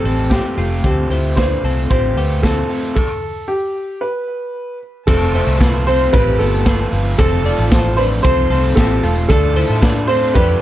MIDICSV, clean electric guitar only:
0, 0, Header, 1, 2, 480
1, 0, Start_track
1, 0, Tempo, 528634
1, 764, Time_signature, 4, 2, 24, 8
1, 9640, End_track
2, 0, Start_track
2, 0, Title_t, "Clean electric guitar"
2, 0, Program_c, 0, 27
2, 49, Note_on_c, 0, 69, 71
2, 57, Note_on_c, 0, 60, 55
2, 283, Note_off_c, 0, 60, 0
2, 286, Note_off_c, 0, 69, 0
2, 286, Note_on_c, 0, 67, 67
2, 294, Note_on_c, 0, 60, 53
2, 522, Note_off_c, 0, 67, 0
2, 525, Note_on_c, 0, 65, 74
2, 529, Note_off_c, 0, 60, 0
2, 534, Note_on_c, 0, 57, 52
2, 765, Note_off_c, 0, 65, 0
2, 769, Note_off_c, 0, 57, 0
2, 772, Note_on_c, 0, 69, 94
2, 777, Note_on_c, 0, 60, 73
2, 1006, Note_off_c, 0, 69, 0
2, 1010, Note_on_c, 0, 72, 73
2, 1012, Note_off_c, 0, 60, 0
2, 1016, Note_on_c, 0, 64, 61
2, 1248, Note_off_c, 0, 72, 0
2, 1251, Note_off_c, 0, 64, 0
2, 1254, Note_on_c, 0, 71, 72
2, 1263, Note_on_c, 0, 62, 55
2, 1491, Note_off_c, 0, 71, 0
2, 1495, Note_off_c, 0, 62, 0
2, 1495, Note_on_c, 0, 69, 73
2, 1501, Note_on_c, 0, 60, 57
2, 1732, Note_off_c, 0, 69, 0
2, 1735, Note_off_c, 0, 60, 0
2, 1740, Note_on_c, 0, 67, 65
2, 1749, Note_on_c, 0, 60, 55
2, 1964, Note_off_c, 0, 67, 0
2, 1975, Note_on_c, 0, 67, 68
2, 1979, Note_off_c, 0, 60, 0
2, 1984, Note_on_c, 0, 59, 57
2, 2213, Note_off_c, 0, 67, 0
2, 2217, Note_off_c, 0, 59, 0
2, 2218, Note_on_c, 0, 69, 73
2, 2228, Note_on_c, 0, 60, 61
2, 2666, Note_off_c, 0, 69, 0
2, 2672, Note_off_c, 0, 60, 0
2, 4616, Note_on_c, 0, 69, 102
2, 4623, Note_on_c, 0, 60, 71
2, 4854, Note_off_c, 0, 69, 0
2, 4857, Note_on_c, 0, 72, 80
2, 4858, Note_off_c, 0, 60, 0
2, 4864, Note_on_c, 0, 64, 61
2, 5090, Note_off_c, 0, 72, 0
2, 5094, Note_on_c, 0, 71, 76
2, 5099, Note_off_c, 0, 64, 0
2, 5105, Note_on_c, 0, 65, 60
2, 5330, Note_off_c, 0, 71, 0
2, 5333, Note_on_c, 0, 69, 80
2, 5338, Note_off_c, 0, 65, 0
2, 5341, Note_on_c, 0, 60, 64
2, 5569, Note_off_c, 0, 60, 0
2, 5573, Note_off_c, 0, 69, 0
2, 5575, Note_on_c, 0, 67, 73
2, 5580, Note_on_c, 0, 60, 55
2, 5798, Note_off_c, 0, 67, 0
2, 5809, Note_on_c, 0, 67, 76
2, 5813, Note_off_c, 0, 60, 0
2, 5817, Note_on_c, 0, 59, 60
2, 6050, Note_off_c, 0, 67, 0
2, 6053, Note_on_c, 0, 71, 85
2, 6054, Note_off_c, 0, 59, 0
2, 6058, Note_on_c, 0, 65, 69
2, 6502, Note_off_c, 0, 71, 0
2, 6505, Note_off_c, 0, 65, 0
2, 6530, Note_on_c, 0, 69, 117
2, 6535, Note_on_c, 0, 60, 84
2, 6767, Note_off_c, 0, 69, 0
2, 6771, Note_off_c, 0, 60, 0
2, 6771, Note_on_c, 0, 74, 76
2, 6776, Note_on_c, 0, 65, 60
2, 7009, Note_off_c, 0, 74, 0
2, 7012, Note_off_c, 0, 65, 0
2, 7014, Note_on_c, 0, 72, 77
2, 7022, Note_on_c, 0, 65, 62
2, 7244, Note_off_c, 0, 72, 0
2, 7247, Note_on_c, 0, 71, 76
2, 7254, Note_off_c, 0, 65, 0
2, 7255, Note_on_c, 0, 62, 64
2, 7484, Note_off_c, 0, 71, 0
2, 7488, Note_on_c, 0, 69, 86
2, 7490, Note_off_c, 0, 62, 0
2, 7496, Note_on_c, 0, 60, 71
2, 7712, Note_off_c, 0, 69, 0
2, 7723, Note_off_c, 0, 60, 0
2, 7723, Note_on_c, 0, 69, 77
2, 7734, Note_on_c, 0, 60, 60
2, 7961, Note_off_c, 0, 60, 0
2, 7963, Note_off_c, 0, 69, 0
2, 7964, Note_on_c, 0, 67, 78
2, 7972, Note_on_c, 0, 60, 63
2, 8200, Note_off_c, 0, 67, 0
2, 8203, Note_on_c, 0, 65, 86
2, 8207, Note_off_c, 0, 60, 0
2, 8211, Note_on_c, 0, 57, 62
2, 8442, Note_off_c, 0, 65, 0
2, 8443, Note_on_c, 0, 69, 108
2, 8446, Note_off_c, 0, 57, 0
2, 8450, Note_on_c, 0, 62, 79
2, 8680, Note_off_c, 0, 69, 0
2, 8684, Note_on_c, 0, 72, 86
2, 8685, Note_off_c, 0, 62, 0
2, 8691, Note_on_c, 0, 64, 67
2, 8921, Note_off_c, 0, 72, 0
2, 8925, Note_off_c, 0, 64, 0
2, 8926, Note_on_c, 0, 71, 82
2, 8934, Note_on_c, 0, 62, 66
2, 9161, Note_off_c, 0, 71, 0
2, 9165, Note_on_c, 0, 69, 84
2, 9166, Note_off_c, 0, 62, 0
2, 9174, Note_on_c, 0, 60, 66
2, 9401, Note_off_c, 0, 69, 0
2, 9404, Note_on_c, 0, 67, 79
2, 9405, Note_off_c, 0, 60, 0
2, 9411, Note_on_c, 0, 62, 57
2, 9633, Note_off_c, 0, 67, 0
2, 9640, Note_off_c, 0, 62, 0
2, 9640, End_track
0, 0, End_of_file